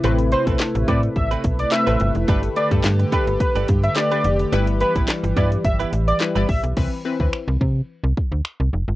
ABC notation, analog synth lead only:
X:1
M:4/4
L:1/16
Q:1/4=107
K:C
V:1 name="Analog synth lead"
z2 c z3 d z e z2 d e3 z | z2 d z3 B z B z2 e d3 z | z2 B z3 d z e z2 d z2 e z | z16 |]